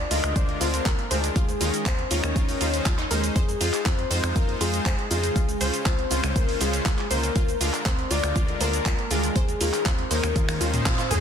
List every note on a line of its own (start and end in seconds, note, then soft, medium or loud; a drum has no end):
0.00 0.10 D5 loud
0.11 0.21 D2 loud
0.11 0.58 D3 medium
0.11 0.58 G#3 medium
0.11 0.58 D4 medium
0.11 0.58 F4 medium
0.11 0.16 F4 medium
0.11 0.58 A#4 medium
0.11 0.34 D#5 loud
0.11 open hi-hat loud
0.11 cabasa medium
0.24 0.33 D2 medium
0.24 finger snap medium
0.24 closed hi-hat medium
0.24 cabasa soft
0.36 0.55 D2 medium
0.36 0.44 C5 medium
0.36 0.59 D5 loud
0.36 kick loud
0.36 closed hi-hat medium
0.36 cabasa soft
0.49 closed hi-hat soft
0.61 0.80 D2 medium
0.61 0.81 D3 medium
0.61 0.81 G#3 medium
0.61 0.81 D4 medium
0.61 0.81 F4 medium
0.61 0.69 F4 medium
0.61 0.81 A#4 loud
0.61 0.88 C5 loud
0.61 open hi-hat loud
0.61 cabasa medium
0.74 closed hi-hat medium
0.74 cabasa soft
0.86 0.96 D2 medium
0.86 0.91 F4 medium
0.86 1.11 A#4 loud
0.86 kick loud
0.86 clap loud
0.86 closed hi-hat medium
0.86 cabasa soft
0.99 closed hi-hat soft
1.11 1.30 D2 medium
1.11 1.24 D#3 medium
1.11 1.24 G#3 medium
1.11 1.24 D4 medium
1.11 1.24 F4 medium
1.11 1.87 G#4 loud
1.11 1.24 A#4 loud
1.11 1.19 C5 medium
1.11 open hi-hat loud
1.11 cabasa medium
1.24 closed hi-hat medium
1.24 cabasa soft
1.36 1.55 D#2 loud
1.36 1.44 F4 medium
1.36 kick loud
1.36 closed hi-hat medium
1.36 cabasa soft
1.49 closed hi-hat soft
1.49 cabasa soft
1.61 1.71 D#2 medium
1.61 1.74 D#3 medium
1.61 1.74 G#3 medium
1.61 1.74 C#4 medium
1.61 1.74 D#4 medium
1.61 1.66 F4 medium
1.61 1.74 A#4 medium
1.61 open hi-hat loud
1.61 cabasa medium
1.74 closed hi-hat medium
1.74 cabasa soft
1.86 2.05 D#2 medium
1.86 1.94 C5 medium
1.86 2.12 C5 loud
1.86 kick loud
1.86 clap loud
1.86 closed hi-hat medium
1.86 cabasa soft
1.99 closed hi-hat soft
2.11 2.21 D#2 medium
2.11 2.58 D#3 medium
2.11 2.58 G#3 medium
2.11 2.58 C#4 medium
2.11 2.58 D#4 medium
2.11 2.19 F4 medium
2.11 2.58 A#4 medium
2.11 2.86 C#5 loud
2.11 open hi-hat loud
2.11 cabasa medium
2.24 2.33 D#2 medium
2.24 finger snap medium
2.24 closed hi-hat medium
2.24 cabasa soft
2.36 2.55 D#2 medium
2.36 2.41 F4 medium
2.36 kick loud
2.36 closed hi-hat medium
2.36 cabasa soft
2.49 open hi-hat medium
2.49 cabasa soft
2.61 2.80 D#2 loud
2.61 2.71 D#3 medium
2.61 2.71 G#3 medium
2.61 2.71 C#4 medium
2.61 2.71 D#4 medium
2.61 2.69 F4 medium
2.61 2.71 C5 loud
2.61 open hi-hat loud
2.61 cabasa medium
2.73 2.86 D#3 loud
2.73 2.86 G#3 medium
2.73 2.86 C#4 medium
2.73 2.86 D#4 medium
2.73 2.86 C5 loud
2.73 closed hi-hat medium
2.73 cabasa soft
2.86 3.05 D#2 loud
2.86 2.94 F4 medium
2.86 kick loud
2.86 clap loud
2.86 closed hi-hat soft
2.86 cabasa soft
2.99 3.06 D#4 medium
2.99 clap soft
2.99 closed hi-hat soft
3.11 3.30 D#2 loud
3.11 3.24 G#3 loud
3.11 3.24 C#4 medium
3.11 3.24 D#4 medium
3.11 3.82 G#4 loud
3.11 3.19 A#4 medium
3.11 3.24 C5 loud
3.11 open hi-hat loud
3.11 cabasa medium
3.24 closed hi-hat medium
3.24 cabasa soft
3.36 3.55 F2 loud
3.36 3.44 C5 medium
3.36 kick loud
3.36 closed hi-hat soft
3.36 cabasa soft
3.49 closed hi-hat soft
3.49 cabasa soft
3.61 3.71 F2 medium
3.61 3.74 G#3 medium
3.61 3.74 D#4 medium
3.61 3.69 F4 medium
3.61 3.74 F4 medium
3.61 3.74 C5 medium
3.61 open hi-hat loud
3.61 cabasa medium
3.74 clap soft
3.74 closed hi-hat medium
3.74 cabasa soft
3.86 4.05 F2 medium
3.86 3.91 F4 medium
3.86 4.37 C5 loud
3.86 kick loud
3.86 clap loud
3.86 closed hi-hat medium
3.86 cabasa soft
3.99 closed hi-hat soft
4.11 4.21 F2 medium
4.11 4.58 G#3 medium
4.11 4.58 D#4 medium
4.11 4.58 F4 medium
4.11 4.19 C5 medium
4.11 4.58 C5 medium
4.11 open hi-hat loud
4.11 cabasa medium
4.23 4.33 F2 medium
4.23 finger snap medium
4.23 closed hi-hat medium
4.23 cabasa soft
4.36 4.55 F2 medium
4.36 4.44 F4 medium
4.36 4.60 A#4 loud
4.36 kick loud
4.36 closed hi-hat medium
4.36 cabasa soft
4.49 closed hi-hat soft
4.61 4.80 F2 loud
4.61 4.81 G#3 medium
4.61 4.81 D#4 medium
4.61 4.66 F4 medium
4.61 4.81 F4 medium
4.61 5.07 G#4 loud
4.61 4.81 C5 loud
4.61 open hi-hat loud
4.61 cabasa medium
4.74 closed hi-hat medium
4.74 cabasa soft
4.86 4.96 F2 loud
4.86 4.94 C5 medium
4.86 kick loud
4.86 clap loud
4.86 closed hi-hat medium
4.86 cabasa soft
4.99 closed hi-hat soft
5.10 5.30 F2 medium
5.10 5.24 C#3 loud
5.10 5.24 G#3 medium
5.10 5.24 D#4 medium
5.10 5.19 F4 medium
5.10 5.24 F4 medium
5.10 5.82 G#4 loud
5.10 5.24 C5 loud
5.10 open hi-hat loud
5.10 cabasa medium
5.24 closed hi-hat medium
5.24 cabasa soft
5.36 5.55 C#2 loud
5.36 5.41 F4 medium
5.36 kick loud
5.36 closed hi-hat medium
5.36 cabasa soft
5.49 closed hi-hat soft
5.49 cabasa soft
5.61 5.71 C#2 medium
5.61 5.74 C#3 medium
5.61 5.74 G#3 medium
5.61 5.74 C#4 medium
5.61 5.74 F4 medium
5.61 5.74 C5 medium
5.61 5.69 C5 medium
5.61 open hi-hat loud
5.61 cabasa medium
5.74 closed hi-hat medium
5.74 cabasa soft
5.86 6.05 C#2 loud
5.86 5.94 F4 medium
5.86 6.32 C5 loud
5.86 kick loud
5.86 clap loud
5.86 closed hi-hat medium
5.86 cabasa soft
5.99 closed hi-hat soft
6.11 6.21 C#2 loud
6.11 6.58 C#3 medium
6.11 6.58 G#3 medium
6.11 6.58 C#4 medium
6.11 6.58 F4 medium
6.11 6.16 F4 medium
6.11 6.58 C5 medium
6.11 open hi-hat loud
6.11 cabasa medium
6.24 6.33 C#2 medium
6.24 finger snap medium
6.24 closed hi-hat medium
6.24 cabasa soft
6.36 6.55 C#2 medium
6.36 6.59 A#4 loud
6.36 6.44 C5 medium
6.36 kick loud
6.36 closed hi-hat medium
6.36 cabasa soft
6.49 open hi-hat medium
6.61 6.80 C#2 medium
6.61 6.81 C#3 medium
6.61 6.81 G#3 medium
6.61 6.81 C#4 medium
6.61 6.81 F4 medium
6.61 6.69 F4 medium
6.61 7.07 G#4 loud
6.61 6.81 C5 loud
6.61 open hi-hat loud
6.61 cabasa medium
6.73 closed hi-hat medium
6.73 cabasa soft
6.86 6.96 C#2 medium
6.86 6.91 F4 medium
6.86 kick loud
6.86 clap loud
6.86 closed hi-hat medium
6.86 cabasa soft
6.98 clap soft
6.98 closed hi-hat soft
7.11 7.30 C#2 medium
7.11 7.24 D3 loud
7.11 7.24 G#3 medium
7.11 7.24 C#4 medium
7.11 7.24 F4 medium
7.11 7.57 A#4 medium
7.11 7.19 C5 medium
7.11 7.24 C5 loud
7.11 open hi-hat loud
7.11 cabasa medium
7.23 closed hi-hat medium
7.23 cabasa soft
7.36 7.55 D2 loud
7.36 7.44 F4 medium
7.36 kick loud
7.36 closed hi-hat medium
7.36 cabasa soft
7.48 closed hi-hat soft
7.48 cabasa soft
7.61 7.71 D2 medium
7.61 7.74 D3 medium
7.61 7.74 G#3 medium
7.61 7.74 D4 medium
7.61 7.66 F4 medium
7.61 7.74 F4 medium
7.61 7.74 A#4 medium
7.61 open hi-hat loud
7.61 cabasa medium
7.74 clap soft
7.74 closed hi-hat medium
7.74 cabasa soft
7.86 8.05 D2 medium
7.86 7.94 C5 medium
7.86 8.12 C5 loud
7.86 kick loud
7.86 clap loud
7.86 closed hi-hat medium
7.86 cabasa soft
7.99 closed hi-hat soft
8.11 8.21 D2 medium
8.11 8.58 D3 medium
8.11 8.58 G#3 medium
8.11 8.58 D4 medium
8.11 8.19 F4 medium
8.11 8.58 F4 medium
8.11 8.58 A#4 medium
8.11 8.60 D5 loud
8.11 open hi-hat loud
8.11 cabasa medium
8.23 8.33 D2 medium
8.23 finger snap medium
8.23 closed hi-hat medium
8.23 cabasa soft
8.36 8.55 D2 medium
8.36 8.41 F4 medium
8.36 kick loud
8.36 closed hi-hat medium
8.36 cabasa medium
8.48 closed hi-hat soft
8.61 8.80 D2 medium
8.61 8.81 D3 medium
8.61 8.81 G#3 medium
8.61 8.81 D4 medium
8.61 8.81 F4 medium
8.61 8.81 A#4 loud
8.61 9.12 A#4 loud
8.61 8.69 C5 medium
8.61 open hi-hat loud
8.61 cabasa medium
8.73 closed hi-hat medium
8.73 cabasa soft
8.86 8.96 D2 medium
8.86 8.94 F4 medium
8.86 kick loud
8.86 clap loud
8.86 closed hi-hat medium
8.86 cabasa soft
8.99 closed hi-hat soft
9.11 9.30 D2 medium
9.11 9.24 D#3 medium
9.11 9.24 G#3 medium
9.11 9.24 D4 medium
9.11 9.16 F4 medium
9.11 9.24 F4 medium
9.11 9.87 G#4 loud
9.11 9.24 A#4 loud
9.11 open hi-hat loud
9.11 cabasa medium
9.23 closed hi-hat medium
9.23 cabasa soft
9.36 9.55 D#2 loud
9.36 9.44 C5 medium
9.36 kick loud
9.36 closed hi-hat medium
9.36 cabasa soft
9.48 closed hi-hat soft
9.48 cabasa soft
9.61 9.71 D#2 medium
9.61 9.74 D#3 medium
9.61 9.74 G#3 medium
9.61 9.74 C#4 medium
9.61 9.74 D#4 medium
9.61 9.69 F4 medium
9.61 9.74 A#4 medium
9.61 open hi-hat loud
9.61 cabasa medium
9.73 clap soft
9.73 closed hi-hat medium
9.73 cabasa soft
9.86 10.05 D#2 loud
9.86 9.91 F4 medium
9.86 10.12 C5 loud
9.86 kick loud
9.86 clap loud
9.86 closed hi-hat medium
9.86 cabasa soft
9.99 closed hi-hat soft
10.11 10.21 D#2 medium
10.11 10.58 D#3 medium
10.11 10.58 G#3 medium
10.11 10.58 C#4 medium
10.11 10.58 D#4 medium
10.11 10.58 A#4 medium
10.11 10.85 A#4 loud
10.11 10.19 C5 medium
10.11 open hi-hat loud
10.11 cabasa medium
10.24 10.33 D#2 medium
10.24 finger snap medium
10.24 closed hi-hat medium
10.24 cabasa soft
10.36 10.55 D#2 medium
10.36 10.44 F4 medium
10.36 kick loud
10.36 closed hi-hat medium
10.36 high tom medium
10.36 cabasa soft
10.49 finger snap medium
10.49 open hi-hat medium
10.49 high tom medium
10.49 cabasa soft
10.61 10.80 D#2 medium
10.61 10.71 D#3 medium
10.61 10.71 G#3 medium
10.61 10.71 C#4 medium
10.61 10.71 D#4 medium
10.61 10.69 F4 medium
10.61 10.71 C5 loud
10.61 open hi-hat loud
10.61 cabasa medium
10.74 10.86 D#3 loud
10.74 10.86 G#3 loud
10.74 10.86 C#4 medium
10.74 10.86 D#4 medium
10.74 10.86 C5 loud
10.74 closed hi-hat medium
10.74 mid tom medium
10.74 cabasa soft
10.86 10.96 D#2 loud
10.86 10.91 F4 loud
10.86 11.12 C5 loud
10.86 kick loud
10.86 clap loud
10.86 closed hi-hat medium
10.86 mid tom medium
10.86 cabasa soft
10.99 11.06 F4 medium
10.99 clap soft
10.99 closed hi-hat soft
10.99 cabasa soft
11.11 11.20 D#2 medium
11.11 11.20 G#3 loud
11.11 11.20 C#4 medium
11.11 11.20 D#4 medium
11.11 11.19 G#4 loud
11.11 11.20 G#4 loud
11.11 11.20 C5 loud
11.11 mid tom loud
11.11 open hi-hat loud
11.11 cabasa medium